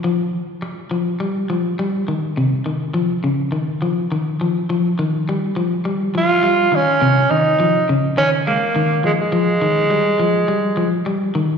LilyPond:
<<
  \new Staff \with { instrumentName = "Tenor saxophone" } { \time 4/4 \key bes \dorian \tempo 4 = 104 r1 | r1 | r2 r8 f'4 des'8~ | des'8 ees'4 r8 des'8 bes4 aes16 aes16~ |
aes2~ aes8. r4 r16 | }
  \new Staff \with { instrumentName = "Clean electric guitar" } { \clef bass \time 4/4 \key bes \dorian f8 r4 f8 g8 f8 g8 ees8 | c8 ees8 f8 des8 ees8 f8 ees8 f8 | f8 ees8 g8 f8 g8 f8 g8 ees8 | c8 ees8 f8 des8 ees8 aes8 ees8 f8 |
f8 ees8 g8 f8 g8 f8 g8 ees8 | }
>>